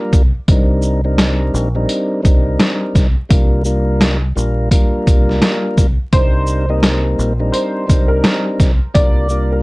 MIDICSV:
0, 0, Header, 1, 5, 480
1, 0, Start_track
1, 0, Key_signature, -3, "minor"
1, 0, Tempo, 705882
1, 326, Time_signature, 4, 2, 24, 8
1, 6546, End_track
2, 0, Start_track
2, 0, Title_t, "Upright piano"
2, 0, Program_c, 0, 0
2, 4167, Note_on_c, 0, 72, 105
2, 4531, Note_off_c, 0, 72, 0
2, 4554, Note_on_c, 0, 75, 76
2, 4770, Note_off_c, 0, 75, 0
2, 5116, Note_on_c, 0, 72, 82
2, 5484, Note_off_c, 0, 72, 0
2, 5496, Note_on_c, 0, 70, 77
2, 5720, Note_off_c, 0, 70, 0
2, 6082, Note_on_c, 0, 74, 114
2, 6448, Note_off_c, 0, 74, 0
2, 6474, Note_on_c, 0, 70, 66
2, 6546, Note_off_c, 0, 70, 0
2, 6546, End_track
3, 0, Start_track
3, 0, Title_t, "Tonewheel organ"
3, 0, Program_c, 1, 16
3, 0, Note_on_c, 1, 55, 104
3, 0, Note_on_c, 1, 58, 89
3, 0, Note_on_c, 1, 62, 93
3, 0, Note_on_c, 1, 65, 84
3, 0, Note_on_c, 1, 70, 113
3, 150, Note_off_c, 1, 55, 0
3, 151, Note_off_c, 1, 58, 0
3, 152, Note_off_c, 1, 62, 0
3, 153, Note_off_c, 1, 65, 0
3, 154, Note_off_c, 1, 70, 0
3, 342, Note_on_c, 1, 55, 101
3, 344, Note_on_c, 1, 60, 93
3, 346, Note_on_c, 1, 62, 90
3, 347, Note_on_c, 1, 63, 83
3, 349, Note_on_c, 1, 70, 106
3, 686, Note_off_c, 1, 55, 0
3, 687, Note_off_c, 1, 60, 0
3, 688, Note_off_c, 1, 62, 0
3, 689, Note_off_c, 1, 63, 0
3, 690, Note_off_c, 1, 70, 0
3, 710, Note_on_c, 1, 55, 91
3, 712, Note_on_c, 1, 60, 86
3, 713, Note_on_c, 1, 62, 88
3, 715, Note_on_c, 1, 63, 84
3, 717, Note_on_c, 1, 70, 106
3, 1145, Note_off_c, 1, 55, 0
3, 1145, Note_off_c, 1, 60, 0
3, 1146, Note_off_c, 1, 62, 0
3, 1147, Note_off_c, 1, 63, 0
3, 1148, Note_off_c, 1, 70, 0
3, 1190, Note_on_c, 1, 55, 91
3, 1192, Note_on_c, 1, 60, 96
3, 1194, Note_on_c, 1, 62, 92
3, 1195, Note_on_c, 1, 63, 86
3, 1197, Note_on_c, 1, 70, 113
3, 1502, Note_off_c, 1, 55, 0
3, 1503, Note_off_c, 1, 60, 0
3, 1504, Note_off_c, 1, 62, 0
3, 1505, Note_off_c, 1, 63, 0
3, 1506, Note_off_c, 1, 70, 0
3, 1511, Note_on_c, 1, 55, 92
3, 1514, Note_on_c, 1, 60, 88
3, 1515, Note_on_c, 1, 62, 81
3, 1517, Note_on_c, 1, 63, 85
3, 1519, Note_on_c, 1, 70, 99
3, 2087, Note_off_c, 1, 55, 0
3, 2088, Note_off_c, 1, 60, 0
3, 2089, Note_off_c, 1, 62, 0
3, 2090, Note_off_c, 1, 63, 0
3, 2091, Note_off_c, 1, 70, 0
3, 2237, Note_on_c, 1, 55, 95
3, 2239, Note_on_c, 1, 58, 88
3, 2241, Note_on_c, 1, 62, 92
3, 2243, Note_on_c, 1, 65, 79
3, 2244, Note_on_c, 1, 70, 106
3, 2467, Note_off_c, 1, 55, 0
3, 2468, Note_off_c, 1, 58, 0
3, 2469, Note_off_c, 1, 62, 0
3, 2470, Note_off_c, 1, 65, 0
3, 2471, Note_off_c, 1, 70, 0
3, 2481, Note_on_c, 1, 55, 86
3, 2483, Note_on_c, 1, 58, 84
3, 2485, Note_on_c, 1, 62, 89
3, 2486, Note_on_c, 1, 65, 87
3, 2488, Note_on_c, 1, 70, 103
3, 2835, Note_off_c, 1, 55, 0
3, 2836, Note_off_c, 1, 58, 0
3, 2837, Note_off_c, 1, 62, 0
3, 2838, Note_off_c, 1, 65, 0
3, 2839, Note_off_c, 1, 70, 0
3, 2962, Note_on_c, 1, 55, 93
3, 2964, Note_on_c, 1, 58, 86
3, 2966, Note_on_c, 1, 62, 83
3, 2967, Note_on_c, 1, 65, 83
3, 2969, Note_on_c, 1, 70, 101
3, 3189, Note_off_c, 1, 55, 0
3, 3190, Note_off_c, 1, 58, 0
3, 3191, Note_off_c, 1, 62, 0
3, 3192, Note_off_c, 1, 65, 0
3, 3193, Note_off_c, 1, 70, 0
3, 3202, Note_on_c, 1, 55, 104
3, 3204, Note_on_c, 1, 58, 87
3, 3206, Note_on_c, 1, 62, 92
3, 3207, Note_on_c, 1, 65, 85
3, 3209, Note_on_c, 1, 70, 111
3, 3989, Note_off_c, 1, 55, 0
3, 3990, Note_off_c, 1, 58, 0
3, 3991, Note_off_c, 1, 62, 0
3, 3991, Note_off_c, 1, 65, 0
3, 3992, Note_off_c, 1, 70, 0
3, 4182, Note_on_c, 1, 55, 96
3, 4184, Note_on_c, 1, 60, 91
3, 4185, Note_on_c, 1, 62, 85
3, 4187, Note_on_c, 1, 63, 85
3, 4189, Note_on_c, 1, 70, 104
3, 4526, Note_off_c, 1, 55, 0
3, 4527, Note_off_c, 1, 60, 0
3, 4527, Note_off_c, 1, 62, 0
3, 4528, Note_off_c, 1, 63, 0
3, 4529, Note_off_c, 1, 70, 0
3, 4549, Note_on_c, 1, 55, 91
3, 4550, Note_on_c, 1, 60, 86
3, 4552, Note_on_c, 1, 58, 90
3, 4554, Note_on_c, 1, 63, 78
3, 4556, Note_on_c, 1, 70, 103
3, 4984, Note_off_c, 1, 55, 0
3, 4985, Note_off_c, 1, 60, 0
3, 4986, Note_off_c, 1, 58, 0
3, 4987, Note_off_c, 1, 63, 0
3, 4988, Note_off_c, 1, 70, 0
3, 5028, Note_on_c, 1, 55, 88
3, 5030, Note_on_c, 1, 60, 94
3, 5033, Note_on_c, 1, 62, 92
3, 5034, Note_on_c, 1, 63, 89
3, 5036, Note_on_c, 1, 70, 113
3, 5341, Note_off_c, 1, 55, 0
3, 5343, Note_off_c, 1, 60, 0
3, 5344, Note_off_c, 1, 62, 0
3, 5344, Note_off_c, 1, 63, 0
3, 5345, Note_off_c, 1, 70, 0
3, 5350, Note_on_c, 1, 55, 86
3, 5352, Note_on_c, 1, 60, 88
3, 5353, Note_on_c, 1, 62, 81
3, 5355, Note_on_c, 1, 63, 83
3, 5357, Note_on_c, 1, 70, 97
3, 5926, Note_off_c, 1, 55, 0
3, 5927, Note_off_c, 1, 60, 0
3, 5928, Note_off_c, 1, 62, 0
3, 5929, Note_off_c, 1, 63, 0
3, 5930, Note_off_c, 1, 70, 0
3, 6078, Note_on_c, 1, 55, 94
3, 6079, Note_on_c, 1, 58, 87
3, 6081, Note_on_c, 1, 62, 87
3, 6083, Note_on_c, 1, 65, 83
3, 6085, Note_on_c, 1, 70, 103
3, 6307, Note_off_c, 1, 55, 0
3, 6308, Note_off_c, 1, 58, 0
3, 6309, Note_off_c, 1, 62, 0
3, 6310, Note_off_c, 1, 65, 0
3, 6311, Note_off_c, 1, 70, 0
3, 6323, Note_on_c, 1, 55, 86
3, 6324, Note_on_c, 1, 58, 86
3, 6326, Note_on_c, 1, 62, 85
3, 6327, Note_on_c, 1, 65, 89
3, 6329, Note_on_c, 1, 70, 104
3, 6546, Note_off_c, 1, 55, 0
3, 6546, Note_off_c, 1, 58, 0
3, 6546, Note_off_c, 1, 62, 0
3, 6546, Note_off_c, 1, 65, 0
3, 6546, Note_off_c, 1, 70, 0
3, 6546, End_track
4, 0, Start_track
4, 0, Title_t, "Fingered electric bass"
4, 0, Program_c, 2, 33
4, 87, Note_on_c, 2, 36, 90
4, 216, Note_off_c, 2, 36, 0
4, 328, Note_on_c, 2, 36, 115
4, 1020, Note_off_c, 2, 36, 0
4, 1048, Note_on_c, 2, 34, 93
4, 1258, Note_off_c, 2, 34, 0
4, 1529, Note_on_c, 2, 36, 95
4, 1739, Note_off_c, 2, 36, 0
4, 2007, Note_on_c, 2, 36, 97
4, 2136, Note_off_c, 2, 36, 0
4, 2248, Note_on_c, 2, 36, 116
4, 2940, Note_off_c, 2, 36, 0
4, 2967, Note_on_c, 2, 34, 93
4, 3178, Note_off_c, 2, 34, 0
4, 3449, Note_on_c, 2, 36, 97
4, 3659, Note_off_c, 2, 36, 0
4, 3927, Note_on_c, 2, 36, 86
4, 4056, Note_off_c, 2, 36, 0
4, 4167, Note_on_c, 2, 36, 113
4, 4860, Note_off_c, 2, 36, 0
4, 4888, Note_on_c, 2, 34, 95
4, 5098, Note_off_c, 2, 34, 0
4, 5368, Note_on_c, 2, 36, 94
4, 5578, Note_off_c, 2, 36, 0
4, 5847, Note_on_c, 2, 36, 92
4, 5976, Note_off_c, 2, 36, 0
4, 6087, Note_on_c, 2, 36, 110
4, 6546, Note_off_c, 2, 36, 0
4, 6546, End_track
5, 0, Start_track
5, 0, Title_t, "Drums"
5, 87, Note_on_c, 9, 36, 85
5, 88, Note_on_c, 9, 42, 50
5, 88, Note_on_c, 9, 82, 48
5, 155, Note_off_c, 9, 36, 0
5, 156, Note_off_c, 9, 42, 0
5, 156, Note_off_c, 9, 82, 0
5, 327, Note_on_c, 9, 36, 111
5, 327, Note_on_c, 9, 42, 85
5, 395, Note_off_c, 9, 36, 0
5, 395, Note_off_c, 9, 42, 0
5, 559, Note_on_c, 9, 82, 51
5, 627, Note_off_c, 9, 82, 0
5, 804, Note_on_c, 9, 40, 92
5, 808, Note_on_c, 9, 42, 83
5, 810, Note_on_c, 9, 38, 116
5, 872, Note_off_c, 9, 40, 0
5, 876, Note_off_c, 9, 42, 0
5, 878, Note_off_c, 9, 38, 0
5, 1053, Note_on_c, 9, 82, 64
5, 1121, Note_off_c, 9, 82, 0
5, 1286, Note_on_c, 9, 42, 92
5, 1354, Note_off_c, 9, 42, 0
5, 1529, Note_on_c, 9, 36, 83
5, 1531, Note_on_c, 9, 42, 51
5, 1531, Note_on_c, 9, 82, 51
5, 1597, Note_off_c, 9, 36, 0
5, 1599, Note_off_c, 9, 42, 0
5, 1599, Note_off_c, 9, 82, 0
5, 1765, Note_on_c, 9, 40, 93
5, 1767, Note_on_c, 9, 42, 60
5, 1771, Note_on_c, 9, 38, 115
5, 1833, Note_off_c, 9, 40, 0
5, 1835, Note_off_c, 9, 42, 0
5, 1839, Note_off_c, 9, 38, 0
5, 2007, Note_on_c, 9, 36, 88
5, 2010, Note_on_c, 9, 42, 50
5, 2010, Note_on_c, 9, 82, 49
5, 2014, Note_on_c, 9, 38, 36
5, 2075, Note_off_c, 9, 36, 0
5, 2078, Note_off_c, 9, 42, 0
5, 2078, Note_off_c, 9, 82, 0
5, 2082, Note_off_c, 9, 38, 0
5, 2247, Note_on_c, 9, 36, 114
5, 2247, Note_on_c, 9, 42, 84
5, 2315, Note_off_c, 9, 36, 0
5, 2315, Note_off_c, 9, 42, 0
5, 2479, Note_on_c, 9, 82, 51
5, 2547, Note_off_c, 9, 82, 0
5, 2724, Note_on_c, 9, 40, 93
5, 2729, Note_on_c, 9, 42, 84
5, 2730, Note_on_c, 9, 38, 116
5, 2792, Note_off_c, 9, 40, 0
5, 2797, Note_off_c, 9, 42, 0
5, 2798, Note_off_c, 9, 38, 0
5, 2975, Note_on_c, 9, 82, 61
5, 3043, Note_off_c, 9, 82, 0
5, 3204, Note_on_c, 9, 36, 90
5, 3207, Note_on_c, 9, 42, 89
5, 3272, Note_off_c, 9, 36, 0
5, 3275, Note_off_c, 9, 42, 0
5, 3449, Note_on_c, 9, 36, 82
5, 3450, Note_on_c, 9, 42, 52
5, 3450, Note_on_c, 9, 82, 53
5, 3517, Note_off_c, 9, 36, 0
5, 3518, Note_off_c, 9, 42, 0
5, 3518, Note_off_c, 9, 82, 0
5, 3600, Note_on_c, 9, 38, 37
5, 3668, Note_off_c, 9, 38, 0
5, 3683, Note_on_c, 9, 40, 94
5, 3685, Note_on_c, 9, 42, 62
5, 3689, Note_on_c, 9, 38, 115
5, 3751, Note_off_c, 9, 40, 0
5, 3753, Note_off_c, 9, 42, 0
5, 3757, Note_off_c, 9, 38, 0
5, 3927, Note_on_c, 9, 36, 86
5, 3928, Note_on_c, 9, 42, 50
5, 3928, Note_on_c, 9, 82, 49
5, 3995, Note_off_c, 9, 36, 0
5, 3996, Note_off_c, 9, 42, 0
5, 3996, Note_off_c, 9, 82, 0
5, 4166, Note_on_c, 9, 42, 85
5, 4167, Note_on_c, 9, 36, 110
5, 4234, Note_off_c, 9, 42, 0
5, 4235, Note_off_c, 9, 36, 0
5, 4398, Note_on_c, 9, 82, 51
5, 4466, Note_off_c, 9, 82, 0
5, 4643, Note_on_c, 9, 40, 94
5, 4647, Note_on_c, 9, 42, 83
5, 4649, Note_on_c, 9, 38, 112
5, 4711, Note_off_c, 9, 40, 0
5, 4715, Note_off_c, 9, 42, 0
5, 4717, Note_off_c, 9, 38, 0
5, 4892, Note_on_c, 9, 82, 59
5, 4960, Note_off_c, 9, 82, 0
5, 5124, Note_on_c, 9, 42, 92
5, 5192, Note_off_c, 9, 42, 0
5, 5368, Note_on_c, 9, 36, 85
5, 5369, Note_on_c, 9, 42, 53
5, 5369, Note_on_c, 9, 82, 50
5, 5436, Note_off_c, 9, 36, 0
5, 5437, Note_off_c, 9, 42, 0
5, 5437, Note_off_c, 9, 82, 0
5, 5602, Note_on_c, 9, 40, 93
5, 5604, Note_on_c, 9, 42, 59
5, 5608, Note_on_c, 9, 38, 114
5, 5670, Note_off_c, 9, 40, 0
5, 5672, Note_off_c, 9, 42, 0
5, 5676, Note_off_c, 9, 38, 0
5, 5846, Note_on_c, 9, 36, 89
5, 5848, Note_on_c, 9, 42, 50
5, 5848, Note_on_c, 9, 82, 49
5, 5852, Note_on_c, 9, 38, 36
5, 5914, Note_off_c, 9, 36, 0
5, 5916, Note_off_c, 9, 42, 0
5, 5916, Note_off_c, 9, 82, 0
5, 5920, Note_off_c, 9, 38, 0
5, 6086, Note_on_c, 9, 36, 115
5, 6086, Note_on_c, 9, 42, 86
5, 6154, Note_off_c, 9, 36, 0
5, 6154, Note_off_c, 9, 42, 0
5, 6319, Note_on_c, 9, 82, 49
5, 6387, Note_off_c, 9, 82, 0
5, 6546, End_track
0, 0, End_of_file